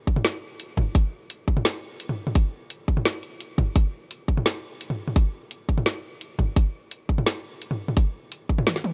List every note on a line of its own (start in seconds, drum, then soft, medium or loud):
0.07 kick medium
0.16 mid tom medium
0.25 snare loud
0.25 closed hi-hat medium
0.60 closed hi-hat medium
0.77 kick medium
0.77 mid tom medium
0.95 kick loud
0.95 closed hi-hat medium
1.30 closed hi-hat medium
1.48 kick medium
1.57 mid tom medium
1.65 snare loud
1.65 closed hi-hat medium
2.00 closed hi-hat medium
2.09 mid tom medium
2.27 mid tom medium
2.35 kick loud
2.35 closed hi-hat medium
2.70 closed hi-hat medium
2.88 kick medium
2.97 mid tom medium
3.05 snare loud
3.05 closed hi-hat medium
3.23 closed hi-hat soft
3.40 closed hi-hat medium
3.58 kick medium
3.58 mid tom medium
3.76 kick loud
3.76 closed hi-hat medium
4.11 closed hi-hat medium
4.28 kick medium
4.37 mid tom medium
4.46 snare loud
4.46 closed hi-hat medium
4.81 closed hi-hat medium
4.90 mid tom medium
5.08 mid tom medium
5.16 kick loud
5.16 closed hi-hat medium
5.51 closed hi-hat medium
5.69 kick medium
5.78 mid tom medium
5.86 snare loud
5.86 closed hi-hat medium
6.21 closed hi-hat medium
6.39 kick medium
6.39 mid tom medium
6.56 kick loud
6.56 closed hi-hat medium
6.91 closed hi-hat medium
7.09 kick medium
7.18 mid tom medium
7.26 snare loud
7.26 closed hi-hat medium
7.62 closed hi-hat medium
7.71 mid tom medium
7.88 mid tom medium
7.97 kick loud
7.97 closed hi-hat medium
8.32 closed hi-hat medium
8.49 kick medium
8.58 mid tom medium
8.67 snare loud
8.67 closed hi-hat medium
8.67 high tom medium
8.76 snare medium
8.84 closed hi-hat soft
8.84 high tom medium